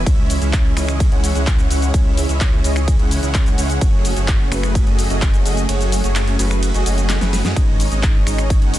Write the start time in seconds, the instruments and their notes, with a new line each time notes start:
Already playing: analog synth pad E3
0.06 detuned saw bass C#2, supersaw synth G#3 C#4 E4 C#5, analog synth pad C#4 G#4, kick, closed hi-hat, ride, shaker
0.30 open hi-hat, shaker
0.42 detuned saw bass C#2, supersaw synth G#3 C#4 E4 C#5 E5, closed hi-hat, shaker
0.53 kick, clap, closed hi-hat, ride, shaker
0.77 detuned saw bass C#2, supersaw synth G#3 C#4 E4 C#5 D#5, finger snap, open hi-hat, shaker
0.88 finger snap, closed hi-hat, shaker
1.00 kick, closed hi-hat, ride, shaker
1.12 detuned saw bass C#2, supersaw synth G#3 C#4 E4 C#5 F#5, closed hi-hat
1.24 open hi-hat, shaker
1.35 detuned saw bass C#2, supersaw synth G#3 C#4 E4 C#5 F#5, closed hi-hat, shaker
1.47 kick, clap, closed hi-hat, ride, shaker
1.59 closed hi-hat, shaker
1.70 detuned saw bass C#2, supersaw synth G#3 C#4 E4 C#5 F#5, open hi-hat, shaker
1.82 closed hi-hat, shaker
1.94 detuned saw bass C#2, supersaw synth G#3, kick, closed hi-hat, ride, shaker
2.17 open hi-hat, shaker
2.29 detuned saw bass C#2, supersaw synth G#3 C#4 E4 C#5 E5, closed hi-hat, shaker
2.41 kick, clap, closed hi-hat, ride, shaker
2.64 detuned saw bass C#2, supersaw synth G#3 C#4 E4 C#5 D#5, open hi-hat, shaker
2.76 finger snap, closed hi-hat, shaker
2.88 kick, closed hi-hat, ride, shaker
2.99 detuned saw bass C#2, supersaw synth G#3 C#4 E4 C#5 F#5, closed hi-hat
3.11 open hi-hat, shaker
3.23 detuned saw bass C#2, supersaw synth G#3 C#4 E4 C#5 F#5, closed hi-hat, shaker
3.34 kick, clap, closed hi-hat, ride, shaker
3.46 closed hi-hat, shaker
3.58 detuned saw bass C#2, supersaw synth G#3 C#4 E4 C#5 F#5, open hi-hat, shaker
3.70 closed hi-hat, shaker
3.81 detuned saw bass F#1, analog synth pad F#3 A3, supersaw synth C#4 G#4 C#5, kick, closed hi-hat, ride, shaker
4.05 open hi-hat, shaker
4.17 detuned saw bass F#1, supersaw synth A3 C#4 F#4 G#4 C#5, closed hi-hat, shaker
4.28 kick, clap, closed hi-hat, ride, shaker
4.52 detuned saw bass F#1, supersaw synth A3 C#4 F#4 G#4 B4, finger snap, open hi-hat, shaker
4.63 finger snap, closed hi-hat, shaker
4.75 kick, closed hi-hat, ride, shaker
4.87 detuned saw bass F#1, supersaw synth A3 C#4 F#4 G#4 D#5, closed hi-hat
4.99 open hi-hat, shaker
5.10 detuned saw bass F#1, supersaw synth A3 C#4 F#4 G#4 D#5, closed hi-hat, shaker
5.22 kick, clap, closed hi-hat, ride, shaker
5.34 closed hi-hat, shaker
5.45 detuned saw bass F#1, supersaw synth A3 C#4 F#4 G#4 D#5, open hi-hat, shaker
5.57 closed hi-hat, shaker
5.69 detuned saw bass F#1, supersaw synth A3 C#4 F#4 G#4 C#5, closed hi-hat, ride, shaker
5.81 closed hi-hat, shaker
5.92 open hi-hat, shaker
6.04 detuned saw bass F#1, supersaw synth A3 C#4 F#4 G#4 C#5, closed hi-hat, shaker
6.16 clap, closed hi-hat, ride, shaker
6.28 closed hi-hat
6.39 detuned saw bass F#1, supersaw synth A3 C#4 F#4 G#4 B4, open hi-hat, shaker
6.51 finger snap, closed hi-hat, shaker
6.63 closed hi-hat, ride, shaker
6.74 detuned saw bass F#1, supersaw synth A3 C#4 F#4 G#4 D#5, closed hi-hat, shaker
6.86 detuned saw bass F#1, supersaw synth A3 C#4 F#4 G#4 D#5, open hi-hat, shaker
6.98 closed hi-hat, shaker
7.09 snare, clap, closed hi-hat, ride, shaker
7.21 detuned saw bass F#1, supersaw synth A3 C#4 F#4 G#4 B4, snare, closed hi-hat, shaker
7.33 snare, open hi-hat, shaker
7.45 detuned saw bass F#2, supersaw synth A3 C#4 F#4 G#4 D#5, snare, closed hi-hat, shaker
7.56 detuned saw bass G#1, analog synth pad D#3 C#4, supersaw synth G#3 D#4 D#5, kick, closed hi-hat, ride, shaker
7.80 open hi-hat, shaker
7.91 detuned saw bass G#1, supersaw synth G#3 C#4 D#4 C#5 D#5, closed hi-hat, shaker
8.03 kick, clap, closed hi-hat, ride, shaker
8.27 detuned saw bass G#1, supersaw synth G#3 C#4 D#4 C#5 D#5, finger snap, open hi-hat, shaker
8.38 finger snap, closed hi-hat, shaker
8.50 kick, closed hi-hat, ride, shaker
8.62 detuned saw bass G#1, supersaw synth G#3 C#4 D#4 C#5 F#5, closed hi-hat
8.74 open hi-hat, shaker